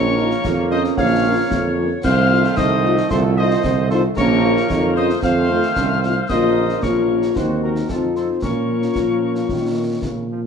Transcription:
Already playing: tuba A#1, trombone section F3 A#3, euphonium C#4, woodwind section A#4, cornet C#5, piccolo C#6
0.18 french horn section A#3 C#4 F4, euphonium D#4
0.31 snare
0.44 tuba F2, euphonium F4, concert bass drum, snare
0.71 french horn section A#3 C#4 F4, euphonium C#4, woodwind section C5, cornet D#5, piccolo D#6
0.84 snare
0.97 tuba A#1, woodwind section C#5, cornet F5, piccolo F6, concert bass drum, snare
1.25 french horn section A#3 C#4 F4
1.51 tuba F2, concert bass drum, snare
1.77 french horn section A#3 C#4 F4
2.04 tuba C2, trombone section D#3 A3, euphonium C4, woodwind section C5, cornet F5, piccolo F6, concert bass drum, snare, crash
2.31 french horn section A3 D#4 F4
2.44 snare
2.57 tuba C2, euphonium D#4, woodwind section C5, cornet D#5, piccolo D#6, concert bass drum, snare
2.84 french horn section A3 D#4 F4
2.98 snare
3.10 tuba C2, euphonium F4, woodwind section A4, cornet C5, piccolo C6, concert bass drum, snare
3.37 french horn section A3 D#4 F4, woodwind section C5, cornet D#5, piccolo D#6
3.51 snare
3.64 tuba C2, euphonium C4, concert bass drum, snare
3.90 french horn section A3 D#4 F4, euphonium D#4, woodwind section A4, cornet C5, piccolo C6, snare
4.17 tuba A#1, trombone section F3 A#3, euphonium C#4, woodwind section A#4, cornet C#5, piccolo C#6, concert bass drum, snare
4.43 french horn section A#3 C#4 F4, euphonium F4
4.57 snare
4.70 tuba F2, euphonium D#4, concert bass drum, snare
4.96 french horn section A#3 C#4 F4, euphonium C#4, woodwind section C5, cornet D#5, piccolo D#6
5.10 snare
5.22 tuba F2, trombone section D#3 A3, euphonium C4, woodwind section C5, cornet F5, piccolo F6, concert bass drum, snare
5.50 french horn section A3 D#4 F4, euphonium A3
5.63 snare
5.76 tuba C2, euphonium C#4, concert bass drum, snare
6.03 french horn section A3 D#4 F4, euphonium C4, snare
6.29 tuba A#1, trombone section F3 A#3, euphonium A#3, french horn section A#3 C#4 F4, woodwind section C5, cornet D#5, piccolo D#6, concert bass drum, snare, crash
6.69 snare
6.83 tuba A#1, french horn section A#3 C#4 F4, euphonium F4, woodwind section A#4, cornet C#5, piccolo C#6, concert bass drum, snare
7.09 euphonium C#4
7.23 snare
7.36 tuba D#2, trombone section F#3 C4, french horn section C4 D#4 F#4, euphonium D#4, woodwind section F#4, cornet C5, piccolo C6, concert bass drum, snare
7.63 woodwind section F#4, cornet A#4, piccolo A#5
7.76 snare
7.89 tuba F2, trombone section F3 D#4, french horn section C4 D#4 F4, euphonium C4, woodwind section F4, cornet A4, piccolo A5, concert bass drum, snare
8.16 woodwind section A4, cornet C5, piccolo C6, snare
8.42 tuba A#2, trombone section F3 C#4, french horn section A#3 C#4 F4, euphonium C#4, woodwind section A#4, cornet C#5, piccolo C#6, concert bass drum, snare
8.82 snare
8.96 tuba A#2, trombone section F3, concert bass drum, snare
9.35 snare
9.49 tuba A#2, trombone section D#3, concert bass drum, snare
10.02 tuba A#2, trombone section C#3, concert bass drum, snare
10.30 trombone section F3

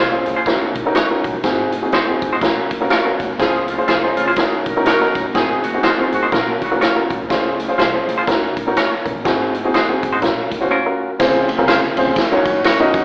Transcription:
Already playing: upright bass C2
0.12 grand piano C#4 F4 G#4 C5
0.26 upright bass C#2, closed hi-hat
0.36 clean electric guitar F4 G#4 C5
0.46 upright bass D#2, grand piano C#4 D#4 F#4 A#4, kick, snare, closed hi-hat
0.75 upright bass A#1, kick, closed hi-hat
0.86 grand piano C#4 D#4 F#4 A#4
0.95 clean electric guitar D#4 F#4 C#5, snare, closed hi-hat
1.10 grand piano C#4 D#4 F#4 A#4
1.24 upright bass A#1, kick, closed hi-hat
1.34 upright bass A1
1.43 upright bass G#1, grand piano C4 D#4 F#4 G#4, kick, snare, closed hi-hat
1.72 closed hi-hat
1.82 grand piano C4 D#4 F#4 G#4
1.92 upright bass F#1, clean electric guitar D#4 F#4 C5, snare, closed hi-hat
2.07 grand piano C4 D#4 F#4 G#4
2.22 upright bass G#1, kick, closed hi-hat
2.33 clean electric guitar D#4 F#4 C5
2.41 upright bass A#1, grand piano C#4 F4 F#4 A#4, kick, snare, closed hi-hat
2.71 upright bass F1, kick, closed hi-hat
2.81 grand piano C#4 F4 F#4 A#4
2.90 clean electric guitar F4 A#4 C#5, snare, closed hi-hat
3.05 grand piano C#4 F4 F#4 A#4
3.20 upright bass F1, kick, snare, closed hi-hat
3.29 upright bass D2
3.39 upright bass C#2, horn section F3 C#4 G#4, grand piano C#4 F4 G#4 C5, kick, snare, closed hi-hat
3.68 horn section C#3 C4 F4, closed hi-hat
3.78 grand piano C#4 F4 G#4 C5
3.88 upright bass C2, horn section D#3 C4 D#4, clean electric guitar F4 G#4 C5, snare, closed hi-hat
4.03 grand piano C#4 F4 G#4 C5
4.17 upright bass C#2, horn section C#3 C4 F4, closed hi-hat
4.28 clean electric guitar F4 G#4 C5
4.36 upright bass D#2, horn section G#3 F4 G#4, grand piano C#4 D#4 F#4 A#4, kick, snare, closed hi-hat
4.66 upright bass A#1, horn section F#3 D#4 A#4, kick, closed hi-hat
4.76 grand piano C#4 D#4 F#4 A#4
4.85 horn section F#3 D#4 A#4, clean electric guitar D#4 F#4 C#5, snare, closed hi-hat
5.01 grand piano C#4 D#4 F#4 A#4
5.15 upright bass A#1, kick, snare, closed hi-hat
5.24 upright bass A1
5.34 upright bass G#1, horn section D#3 C4 G#4, grand piano C4 D#4 F#4 G#4, kick, snare, closed hi-hat
5.64 horn section D#3 C4 F#4, closed hi-hat
5.73 grand piano C4 D#4 F#4 G#4
5.83 horn section F3 C#4 F4, clean electric guitar D#4 F#4 C5, snare, closed hi-hat
5.97 grand piano C4 D#4 F#4 G#4, muted upright bass stroke
6.12 upright bass D#2, horn section D#3 C4 F#4, closed hi-hat
6.23 clean electric guitar D#4 F#4 C5
6.32 upright bass A#2, horn section F#3 F4 A#4, grand piano C#4 F4 F#4 A#4, kick, snare, closed hi-hat
6.62 upright bass C#2, horn section C#3 A#3 F#4, kick, closed hi-hat
6.71 grand piano C#4 F4 F#4 A#4
6.81 clean electric guitar F4 A#4 C#5, snare, closed hi-hat
6.95 grand piano C#4 F4 F#4 A#4
7.10 upright bass A#1, kick, closed hi-hat
7.20 upright bass D2
7.29 upright bass C#2, grand piano C#4 F4 G#4 C5, kick, snare, closed hi-hat
7.60 closed hi-hat
7.68 grand piano C#4 F4 G#4 C5
7.78 upright bass C2, clean electric guitar F4 G#4 C5, snare, closed hi-hat
7.93 grand piano C#4 F4 G#4 C5
8.07 upright bass C#2, closed hi-hat
8.18 clean electric guitar F4 G#4 C5
8.27 upright bass D#2, grand piano C#4 D#4 F#4 A#4, kick, snare, closed hi-hat
8.57 upright bass A#1, kick, closed hi-hat
8.67 grand piano C#4 D#4 F#4 A#4
8.77 grand piano F4 C#5, clean electric guitar F#4 A#4 C#5, snare, closed hi-hat
9.05 upright bass A#1, grand piano C#4 A#4, kick, closed hi-hat
9.15 upright bass A1
9.25 upright bass G#1, grand piano C4 D#4 F#4 G#4, kick, snare, closed hi-hat
9.54 closed hi-hat
9.64 grand piano C4 D#4 F#4 G#4
9.74 upright bass F#1, clean electric guitar D#4 F#4 C5, snare, closed hi-hat
9.89 grand piano C4 D#4 F#4 G#4
10.03 upright bass G#1, kick, closed hi-hat
10.13 clean electric guitar D#4 F#4 C5
10.22 upright bass A#1, grand piano C#4 F4 F#4 A#4, kick, snare, closed hi-hat
10.51 upright bass C#2, kick, closed hi-hat
10.61 grand piano C#4 F4 F#4 C5
10.71 clean electric guitar C#4 F4 A#4
10.85 grand piano C#4 F4 F#4 A#4
11.19 upright bass C#2, tonewheel organ C#3 C4 F4, grand piano C4 C#4 F4 G#4 C5, kick, snare, ride, tambourine
11.48 ride, tambourine
11.58 upright bass C2, grand piano C4 C#4 F4 G#4 A#4
11.68 clean electric guitar F4 G#4 C5, snare, ride, tambourine
11.97 upright bass C#2, grand piano C4 C#4 F4 G#4 C5, ride, tambourine
12.07 upright bass C#2
12.16 upright bass D#2, tonewheel organ D#3 C#4 F#4, kick, snare, ride, tambourine
12.31 grand piano C#4 D#4 F#4 A#4 C#5, muted upright bass stroke
12.45 upright bass F#2, kick, ride, tambourine
12.64 clean electric guitar F#4 A#4 C#5, snare, ride, tambourine
12.80 grand piano C#4 D#4 F#4 A#4 D#5
12.94 upright bass D#2, kick, snare, ride, tambourine

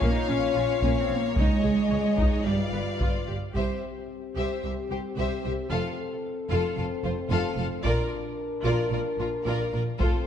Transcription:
Already playing: cello section C#4, french horn section F4 C#5, violin section C#5 F5
0.01 double bass section A#1, viola section A#3, taiko
0.11 cello section D#4
0.28 double bass section A#1, cello section C#4, viola section C#4
0.56 double bass section A#1, viola section F4
0.82 double bass section A#1, viola section A#3, cello section C#4, taiko
1.01 cello section C4
1.09 double bass section A#1, viola section C#4
1.19 cello section A#3
1.36 double bass section C#2, cello section G#3, viola section D#4, french horn section G#4 D#5, violin section D#5, taiko
1.63 double bass section C#2, viola section G#4
1.90 double bass section C#2, viola section C#5
2.18 double bass section C#2, viola section D#4, taiko
2.45 double bass section G1, cello section G3, french horn section F4 B4, viola section G4, violin section D5 F5
2.73 double bass section G1, viola section B4
3.00 double bass section G1, viola section F4, taiko
3.27 double bass section G1, viola section G4
3.54 double bass section C2, cello section C2, french horn section C4 G4, viola section G4, violin section C5 E5, taiko
4.36 double bass section C2, cello section C2, viola section G4, violin section C5 E5
4.63 double bass section C2, cello section C2, viola section G4, violin section C5 E5
4.90 double bass section C2, cello section C2, viola section G4, violin section G4 C5
5.17 double bass section C2, cello section C2, viola section G4, violin section C5 E5
5.44 double bass section C2, cello section C2, viola section G4, violin section C5 E5
5.70 double bass section F1, cello section F2, viola section F4, french horn section A4, violin section A4 F5
6.50 double bass section F1, cello section F2, viola section F4, violin section A4 F5
6.77 double bass section F1, cello section F2, viola section F4, violin section A4 F5
7.03 double bass section F1, cello section F2, viola section F4, violin section F4 C5
7.30 double bass section F1, cello section F2, viola section F4, violin section A4 F5
7.57 double bass section F1, cello section F2, viola section F4, violin section A4 F5
7.83 double bass section A#1, cello section A#2, french horn section D4 A#4, viola section F4, violin section A#4 D5, taiko
8.64 double bass section A#1, cello section A#2, viola section F4, violin section A#4 D5
8.91 double bass section A#1, cello section A#2, viola section F4, violin section A#4 D5
9.18 double bass section A#1, cello section A#2, violin section F4 A#4, viola section F4
9.46 double bass section A#1, cello section A#2, viola section F4, violin section A#4 D5
9.73 double bass section A#1, cello section A#2, viola section F4, violin section A#4 D5
9.99 double bass section F1, cello section F2, french horn section C4 A4, viola section F4, violin section A4 C5, taiko

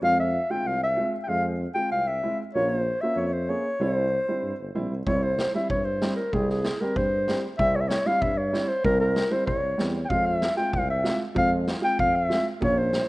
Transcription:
0.02 tuba F2, upright piano G#3 C4 F4, clarinet F5
0.20 clarinet E5
0.50 upright piano G#3 C4 F4, clarinet G5
0.64 tuba C2, clarinet F5
0.83 clarinet E5
0.96 upright piano G#3 C4 F4
1.23 upright piano G#3 C4, clarinet G5
1.27 tuba F2, upright piano G#4, clarinet F5
1.75 upright piano G#3 C4 F4, clarinet G5
1.91 tuba C2, clarinet F5
2.07 clarinet E5
2.23 upright piano G#3 C4 E4
2.55 tuba A#1, upright piano A#3 C#4 F4, clarinet C#5
2.68 clarinet C5
3.01 upright piano A#3 C#4 F4, clarinet E5
3.16 tuba F2, clarinet C#5 E5
3.25 clarinet C#5
3.33 clarinet C5
3.49 upright piano A#3 C#4 G#4, clarinet C#5
3.80 tuba C2, upright piano G3 C4 E4, clarinet C#5
3.94 clarinet C5
4.28 upright piano G3 C4 E4
4.43 tuba G2
4.59 tuba G1
4.74 tuba A#1, upright piano G3 C4 E4
4.90 tuba C2
5.06 tuba C2, upright piano G3 C4 E4, clarinet C#5, kick
5.23 clarinet C5
5.38 snare
5.54 upright piano G3 C4 E4, clarinet E5
5.70 tuba G2, clarinet C#5, kick
5.85 clarinet C5
6.01 upright piano G3 C4 E4, snare
6.16 clarinet A#4
6.33 tuba C2, upright piano G3 C4 G4, clarinet G#4, kick
6.49 clarinet G#4, snare
6.64 snare
6.81 upright piano G3 C4 G4, clarinet A#4
6.96 tuba G2, clarinet C5, kick
7.28 upright piano G3 C4 G4, snare
7.58 tuba C2, upright piano G3 C4 G4, clarinet E5, kick
7.76 clarinet C#5
7.81 clarinet E5
7.88 clarinet C#5, snare
8.06 upright piano G3 C4 E4, clarinet F5
8.22 tuba G2, clarinet E5, kick
8.37 clarinet C#5
8.53 upright piano G3 C4 E4, snare
8.68 clarinet C5
8.84 tuba C2, upright piano G3 C4 G4, clarinet A#4, kick
9.00 clarinet A#4
9.16 snare
9.31 upright piano G3 C4 E4, clarinet C5
9.47 tuba C2, clarinet C#5, kick
9.78 tuba E2, upright piano G3 C4 G4, snare
10.05 clarinet F5 G5
10.10 tuba F2, upright piano G#3 C4 F4, kick
10.26 clarinet E5
10.42 snare
10.56 upright piano G#3 C4 F4, clarinet G5
10.73 tuba C2, clarinet F5, kick
10.90 clarinet E5
11.03 upright piano G#3 C4 F4, snare
11.35 tuba F2, upright piano G#3 C4 F4, clarinet F5, kick
11.67 snare
11.81 upright piano G#3 C4 F4, clarinet G5
11.99 tuba F2, clarinet F5, kick
12.16 clarinet E5
12.29 upright piano G#3 C4 F4, snare
12.60 tuba A#1, upright piano A#3 C#4 F4, clarinet C#5, kick
12.78 clarinet C5
12.93 snare

